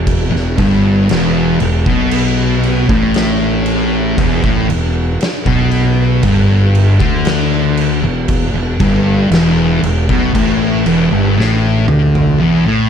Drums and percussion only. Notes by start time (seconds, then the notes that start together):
0.07 kick, crash
0.36 snare
0.58 kick, crash
1.09 snare, crash
1.60 crash
1.86 kick
2.11 crash
2.63 crash
2.89 kick
3.14 snare, crash
3.66 crash
4.18 kick, crash
4.44 kick
4.70 crash
5.21 snare, crash
5.46 kick
5.71 crash
6.23 kick, crash
6.75 crash
7.00 kick
7.25 snare, crash
7.77 crash
8.28 kick, crash
8.80 kick, crash
9.32 snare, crash
9.83 crash
10.09 kick
10.35 kick, crash
10.86 crash
11.40 snare
11.88 mid tom
12.15 floor tom